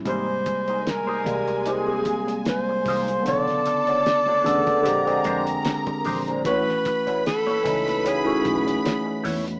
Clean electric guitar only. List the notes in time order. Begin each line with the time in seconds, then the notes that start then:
0.06 A#3 D#4 G4 C5
0.28 muted clean electric guitar stroke
0.47 muted clean electric guitar stroke
0.68 A#3 D#4 G4 C5
0.85 muted clean electric guitar stroke
1.07 A#3 D#4 G4 C5
1.25 muted clean electric guitar stroke
1.48 muted clean electric guitar stroke
1.66 A#3 D#4 G4 C5
2.06 muted clean electric guitar stroke
2.28 muted clean electric guitar stroke
2.47 muted clean electric guitar stroke
2.69 muted clean electric guitar stroke
2.88 A#3 D#4 G4 C5
3.09 muted clean electric guitar stroke
3.27 A3 D4 F#4 C#5
3.48 muted clean electric guitar stroke
3.67 muted clean electric guitar stroke
3.88 A3 D4 F#4 C#5
4.06 muted clean electric guitar stroke
4.28 A3 D4 F#4 C#5
4.45 muted clean electric guitar stroke
4.67 muted clean electric guitar stroke
5.07 muted clean electric guitar stroke
5.25 G#3 D4 G4 C5
5.46 muted clean electric guitar stroke
5.65 muted clean electric guitar stroke
5.87 muted clean electric guitar stroke
6.05 G#3 D4 G4 C5
6.28 G#3 D4 G4 C5
6.46 A3 E4 F#4 C#5
6.68 muted clean electric guitar stroke
6.86 muted clean electric guitar stroke
7.07 A3 E4 F#4 C#5
7.26 muted clean electric guitar stroke
7.47 A3 E4 F#4 C#5
7.66 muted clean electric guitar stroke
7.87 muted clean electric guitar stroke
8.05 A3 E4 F#4 C#5
8.45 muted clean electric guitar stroke
8.67 muted clean electric guitar stroke
8.84 muted clean electric guitar stroke
9.06 muted clean electric guitar stroke
9.23 A3 E4 F#4 C#5
9.46 muted clean electric guitar stroke